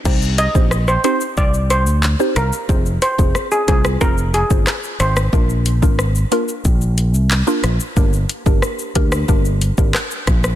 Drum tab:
CC |x---------------|----------------|----------------|----------------|
HH |--x---x---x---x-|--x---x---x---x-|--x---x---x---x-|--x---x---x---x-|
SH |xxxxxxxxxxxxxxxx|xxxxxxxxxxxxxxxx|xxxxxxxxxxxxxxxx|xxxxxxxxxxxxxxxx|
CP |------------x---|------------x---|------------x---|------------x---|
SD |----r---------r-|----r--r----r-rr|----r---------r-|----r--r----r-rr|
BD |o--o----o-------|o--o--o-o--o----|o--o----o-------|o--o--o-o--o--o-|